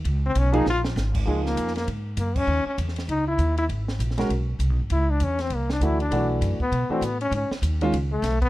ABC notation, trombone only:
X:1
M:4/4
L:1/8
Q:"Swing" 1/4=198
K:C#mix
V:1 name="Trombone"
z ^B, C D E z3 | G, A,2 A, z2 A, C- | C C z2 D =E2 E | z8 |
=E =D C ^B, A, D E D- | =D z2 B,2 ^B, =B, C | C z4 =A,2 B, |]